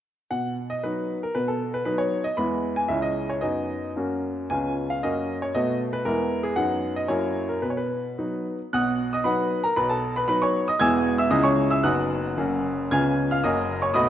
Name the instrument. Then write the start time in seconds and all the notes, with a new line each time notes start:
grand piano
0.31 B2 F#5
0.70 D#5
0.83 F#3 B3 D#4 B4
1.23 A#4
1.35 B2 B4
1.48 A4
1.74 B4
1.85 F#3 B3 D#4 B4
1.98 C#5
2.24 D#5
2.37 E2 G#3 B3 E4 B5
2.76 G#5
2.88 C#2 G#3 C#4 E4 E5
3.02 D#5
3.30 C#5
3.41 F#2 B3 D#4 F#4 D#5
3.96 F#2 A#3 C#4 F#4
4.50 C#2 B3 C#4 F4 G#5
4.90 F5
5.03 F#2 A#3 C#4 F#4 D#5
5.42 C#5
5.55 B2 A3 B3 F#4 D#5
5.93 B4
6.05 E2 G#3 B3 E4 A#4
6.43 G#4
6.56 F#2 F#3 B3 D#4 F#5
6.96 D#5
7.08 F#2 F#3 A#3 E4 C#5
7.49 A#4
7.62 B2 B4
7.70 C#5
7.77 B4
8.18 F#3 B3 D#4
8.73 B1 B2 F#5 D#6 F#6
9.13 D#5 D#6
9.24 F#3 B3 D#4 B4 F#5 B5
9.64 A#4 A#5
9.76 B1 B2 B4 B5
9.89 A4 A5
10.16 B4 B5
10.28 F#3 B3 D#4 B4 B5
10.42 C#5 C#6
10.68 D#5 D#6
10.79 E1 E2 G#3 B3 E4 G#5 E6 G#6
11.18 E5 E6
11.30 C#2 C#3 G#3 C#4 E4 D#5 D#6
11.43 C#5 C#6
11.71 E5 E6
11.83 F#1 F#2 B3 D#4 F#4 F#5 D#6 F#6
12.37 F#1 F#2 A#3 C#4 F#4
12.91 C#2 C#3 B3 C#4 F4 G#5 F6 G#6
13.31 F5 F6
13.44 F#1 F#2 A#3 C#4 F#4 D#5 D#6
13.82 C#5 C#6
13.94 B1 B2 A3 B3 F#4 D#5 B5 D#6